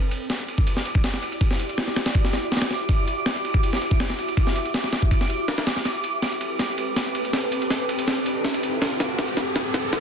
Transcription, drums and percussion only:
0.11 ride medium
0.30 snare loud
0.30 ride medium
0.40 ride soft
0.48 ride medium
0.58 kick medium
0.67 ride medium
0.77 snare soft
0.85 ride medium
0.95 kick medium
1.04 snare loud
1.04 ride medium
1.14 snare soft
1.23 ride medium
1.32 ride soft
1.41 kick loud
1.41 ride medium
1.51 snare soft
1.60 ride medium
1.69 ride soft
1.78 snare loud
1.78 ride medium
1.88 snare soft
1.96 snare loud
1.96 ride medium
2.06 snare loud
2.06 ride medium
2.15 kick loud
2.15 ride medium
2.25 snare soft
2.33 snare soft
2.33 ride medium
2.52 snare medium
2.52 ride medium
2.57 snare medium
2.57 ride medium
2.62 snare loud
2.62 ride medium
2.71 snare soft
2.71 ride medium
2.89 kick loud
2.89 ride medium
3.08 ride medium
3.26 snare loud
3.26 ride medium
3.36 ride soft
3.45 ride medium
3.54 kick medium
3.63 ride medium
3.73 snare soft
3.82 ride medium
3.91 kick medium
4.00 snare loud
4.00 ride medium
4.10 snare soft
4.19 ride medium
4.28 ride soft
4.37 kick loud
4.37 ride medium
4.47 snare soft
4.56 ride medium
4.65 ride soft
4.74 snare loud
4.74 ride medium
4.84 snare soft
4.93 snare loud
4.93 ride medium
5.02 kick medium
5.11 kick loud
5.11 ride medium
5.21 snare soft
5.30 ride medium
5.48 snare loud
5.48 ride medium
5.58 snare loud
5.58 ride medium
5.67 snare loud
5.67 ride medium
5.76 snare soft
5.85 snare soft
5.85 ride medium
6.04 ride medium
6.22 snare medium
6.22 ride medium
6.32 ride soft
6.41 ride medium
6.59 snare medium
6.59 ride medium
6.78 ride medium
6.96 snare medium
6.96 ride medium
7.15 ride medium
7.25 ride soft
7.33 snare medium
7.33 ride medium
7.52 ride medium
7.62 ride soft
7.70 snare medium
7.70 ride medium
7.89 ride medium
7.99 ride medium
8.08 snare medium
8.08 ride medium
8.26 ride medium
8.44 snare medium
8.44 ride medium
8.49 ride medium
8.54 ride medium
8.63 ride medium
8.82 snare medium
8.82 ride medium
9.00 snare medium
9.00 ride medium
9.19 snare medium
9.19 ride medium
9.28 ride soft
9.37 snare medium
9.37 ride medium
9.56 snare medium
9.56 ride medium
9.74 snare medium
9.74 ride medium
9.93 snare medium
9.93 ride medium

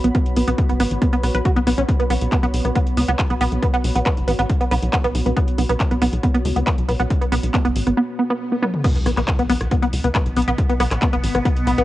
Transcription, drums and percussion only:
0.04 closed hi-hat medium
0.15 kick loud
0.15 closed hi-hat medium
0.26 closed hi-hat soft
0.36 open hi-hat loud
0.48 closed hi-hat medium
0.58 kick loud
0.58 closed hi-hat medium
0.69 closed hi-hat medium
0.80 open hi-hat loud
0.91 closed hi-hat medium
1.02 kick loud
1.02 closed hi-hat medium
1.13 closed hi-hat medium
1.23 open hi-hat loud
1.35 closed hi-hat medium
1.45 kick loud
1.45 closed hi-hat medium
1.56 closed hi-hat medium
1.67 open hi-hat loud
1.78 closed hi-hat medium
1.89 kick loud
1.89 closed hi-hat medium
2.00 closed hi-hat soft
2.10 open hi-hat loud
2.22 closed hi-hat medium
2.32 kick loud
2.32 clap loud
2.32 closed hi-hat soft
2.43 closed hi-hat medium
2.54 open hi-hat loud
2.65 closed hi-hat soft
2.76 kick loud
2.76 closed hi-hat medium
2.87 closed hi-hat medium
2.97 open hi-hat loud
3.08 closed hi-hat medium
3.19 kick loud
3.19 clap loud
3.19 closed hi-hat medium
3.30 closed hi-hat medium
3.41 open hi-hat loud
3.52 closed hi-hat soft
3.63 kick loud
3.63 closed hi-hat medium
3.74 closed hi-hat soft
3.84 open hi-hat loud
3.96 closed hi-hat medium
4.06 kick loud
4.06 clap loud
4.06 closed hi-hat medium
4.17 closed hi-hat medium
4.28 open hi-hat loud
4.39 closed hi-hat soft
4.50 kick loud
4.50 closed hi-hat medium
4.61 closed hi-hat medium
4.71 open hi-hat loud
4.82 closed hi-hat medium
4.93 kick loud
4.93 clap loud
4.93 closed hi-hat medium
5.04 closed hi-hat medium
5.15 open hi-hat loud
5.26 closed hi-hat soft
5.37 kick loud
5.37 closed hi-hat medium
5.48 closed hi-hat medium
5.58 open hi-hat loud
5.69 closed hi-hat medium
5.80 kick loud
5.80 clap loud
5.80 closed hi-hat medium
5.91 closed hi-hat medium
6.02 open hi-hat loud
6.13 closed hi-hat medium
6.23 kick loud
6.23 closed hi-hat medium
6.35 closed hi-hat medium
6.45 open hi-hat loud
6.56 closed hi-hat medium
6.67 kick loud
6.67 clap loud
6.67 closed hi-hat medium
6.78 closed hi-hat medium
6.89 open hi-hat loud
7.00 closed hi-hat medium
7.10 kick loud
7.10 closed hi-hat medium
7.22 closed hi-hat medium
7.32 open hi-hat loud
7.43 closed hi-hat medium
7.54 kick loud
7.54 clap loud
7.54 closed hi-hat medium
7.65 closed hi-hat medium
7.76 open hi-hat loud
7.87 closed hi-hat medium
8.63 high tom medium
8.74 mid tom medium
8.84 kick loud
8.84 closed hi-hat medium
8.84 crash loud
8.96 closed hi-hat medium
9.06 cross-stick medium
9.06 open hi-hat loud
9.17 cross-stick medium
9.17 clap medium
9.17 closed hi-hat medium
9.28 kick loud
9.28 clap loud
9.28 closed hi-hat medium
9.39 closed hi-hat medium
9.50 open hi-hat loud
9.61 cross-stick medium
9.61 closed hi-hat medium
9.71 kick loud
9.71 closed hi-hat medium
9.82 closed hi-hat medium
9.93 open hi-hat loud
10.04 closed hi-hat medium
10.15 kick loud
10.15 cross-stick medium
10.15 clap loud
10.15 closed hi-hat medium
10.26 closed hi-hat medium
10.36 open hi-hat loud
10.42 closed hi-hat medium
10.48 closed hi-hat medium
10.58 kick loud
10.58 closed hi-hat medium
10.69 closed hi-hat medium
10.80 cross-stick medium
10.80 open hi-hat loud
10.91 cross-stick medium
10.91 clap medium
10.91 closed hi-hat medium
11.02 kick loud
11.02 clap loud
11.02 closed hi-hat medium
11.13 closed hi-hat medium
11.23 open hi-hat loud
11.35 cross-stick medium
11.35 closed hi-hat medium
11.45 kick loud
11.45 closed hi-hat medium
11.56 closed hi-hat medium
11.67 open hi-hat loud
11.78 closed hi-hat medium

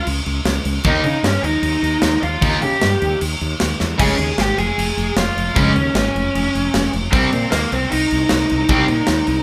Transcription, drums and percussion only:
0.07 crash medium
0.26 crash medium
0.45 snare loud
0.45 crash medium
0.65 crash medium
0.84 kick loud
0.84 crash medium
1.04 crash medium
1.24 snare loud
1.24 crash medium
1.44 crash medium
1.63 crash medium
1.84 crash medium
2.02 snare loud
2.02 crash medium
2.23 crash medium
2.42 kick loud
2.42 crash medium
2.62 crash medium
2.81 snare loud
2.81 crash medium
3.02 crash medium
3.21 crash medium
3.41 crash medium
3.60 snare loud
3.60 crash medium
3.80 snare medium
4.00 kick loud
4.00 crash loud
4.00 crash medium
4.18 crash medium
4.38 snare loud
4.38 crash medium
4.58 crash medium
4.79 crash medium
4.98 crash medium
5.17 snare loud
5.17 crash medium
5.38 crash medium
5.56 kick loud
5.56 crash medium
5.76 crash medium
5.95 snare loud
5.95 crash medium
6.16 crash medium
6.35 crash medium
6.55 crash medium
6.74 snare loud
6.74 crash medium
6.93 crash medium
7.13 kick loud
7.13 crash medium
7.32 crash medium
7.52 snare loud
7.52 crash medium
7.72 crash medium
7.92 crash medium
8.11 crash medium
8.29 snare loud
8.29 crash medium
8.49 crash medium
8.69 kick loud
8.69 crash medium
8.88 crash medium
9.07 snare loud
9.07 crash medium
9.27 crash medium

